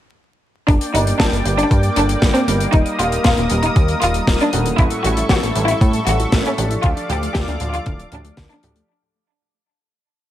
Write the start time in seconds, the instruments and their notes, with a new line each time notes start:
0.68 analog synth bass G1, analog synth pad A#3 D5 G5 D6, violin section D4, kick, closed hi-hat
0.81 closed hi-hat
0.94 analog synth bass G1, grand piano G2 G3 A#3 D4 G4, violin section D#4, closed hi-hat
1.07 closed hi-hat
1.20 analog synth bass G1, violin section D4, kick, snare, closed hi-hat
1.32 analog synth bass G1, closed hi-hat
1.45 analog synth bass G1, grand piano G2 G3 A#3 D4 G4, closed hi-hat
1.58 violin section D4, closed hi-hat
1.71 analog synth bass G2, kick, closed hi-hat
1.83 closed hi-hat
1.96 analog synth bass G1, grand piano G2 G3 A#3 D4 A4, violin section D4, closed hi-hat
2.09 closed hi-hat
2.22 analog synth bass G1, kick, snare, closed hi-hat
2.35 violin section C4, closed hi-hat
2.48 analog synth bass G1, grand piano G3 A#3 D#4 A#4, closed hi-hat
2.60 closed hi-hat
2.73 analog synth bass D#1, violin section D#4, analog synth pad A#4 D#6, kick, closed hi-hat
2.86 closed hi-hat
2.99 analog synth bass D#1, grand piano G3 A#3 D#4 G4, violin section F4, closed hi-hat
3.12 closed hi-hat
3.24 analog synth bass D#1, violin section F4, kick, snare, closed hi-hat
3.37 analog synth bass D#1, closed hi-hat
3.50 analog synth bass D#1, grand piano G3 A#3 D#4 G4, closed hi-hat
3.63 violin section D#4, closed hi-hat
3.76 analog synth bass D#2, kick, closed hi-hat
3.88 closed hi-hat
4.02 analog synth bass D#1, grand piano G3 A#3 D#4 A#4, violin section F4, closed hi-hat
4.14 closed hi-hat
4.27 analog synth bass D#1, kick, snare, closed hi-hat
4.40 violin section D4, closed hi-hat
4.53 analog synth bass D#1, grand piano A2 G3 A3 C#4 F#4, closed hi-hat
4.66 closed hi-hat
4.78 analog synth bass A1, synth arpeggio sound A3, violin section E4, analog synth pad A4 E5 C#6, kick, closed hi-hat
4.90 synth arpeggio sound A4, closed hi-hat
5.04 analog synth bass A1, grand piano A2 G3 A3 C#4 E4, synth arpeggio sound E3, violin section F#4, closed hi-hat
5.17 synth arpeggio sound E4, closed hi-hat
5.29 analog synth bass A1, synth arpeggio sound A3, violin section F#4, kick, snare, closed hi-hat
5.43 analog synth bass A1, synth arpeggio sound A4, closed hi-hat
5.55 analog synth bass A1, grand piano A2 G3 A3 C#4 E4, synth arpeggio sound E3, closed hi-hat
5.68 violin section E4, synth arpeggio sound E4, closed hi-hat
5.81 analog synth bass A2, synth arpeggio sound A3, kick, closed hi-hat
5.93 synth arpeggio sound A4, closed hi-hat
6.07 analog synth bass A1, grand piano A2 G3 A3 C#4 F#4, synth arpeggio sound E3, violin section F#4, closed hi-hat
6.20 synth arpeggio sound E4, closed hi-hat
6.32 analog synth bass A1, synth arpeggio sound A3, kick, snare, closed hi-hat
6.45 violin section C#4, synth arpeggio sound A4, closed hi-hat
6.58 analog synth bass A1, synth arpeggio sound E3, grand piano F3 A3 D4 G4, closed hi-hat
6.71 synth arpeggio sound E4, closed hi-hat
6.83 analog synth bass D2, synth arpeggio sound D3, violin section F4, analog synth pad D5 F5 D6, kick, closed hi-hat
6.97 synth arpeggio sound D4, closed hi-hat
7.09 analog synth bass D2, synth arpeggio sound A2, grand piano F3 A3 D4 F4, violin section G4, closed hi-hat
7.22 synth arpeggio sound A3, closed hi-hat
7.35 analog synth bass D2, synth arpeggio sound D3, violin section G4, kick, snare, closed hi-hat
7.48 analog synth bass D2, synth arpeggio sound D4, closed hi-hat
7.60 analog synth bass D2, synth arpeggio sound A2, grand piano F3 A3 D4 F4, closed hi-hat
7.73 synth arpeggio sound A3, violin section F4, closed hi-hat
7.86 analog synth bass D1, synth arpeggio sound D3, kick, closed hi-hat
7.99 synth arpeggio sound D4, closed hi-hat
8.12 analog synth bass D2, synth arpeggio sound A2, grand piano F3 A3 D4 G4, violin section D4, closed hi-hat
8.25 synth arpeggio sound A3, closed hi-hat
8.37 analog synth bass D2, synth arpeggio sound D3, kick, snare, closed hi-hat
8.50 synth arpeggio sound D4, violin section D4, closed hi-hat
8.63 analog synth bass D2, synth arpeggio sound A2, grand piano F3 A3 D4 G4, closed hi-hat
8.76 synth arpeggio sound A3, closed hi-hat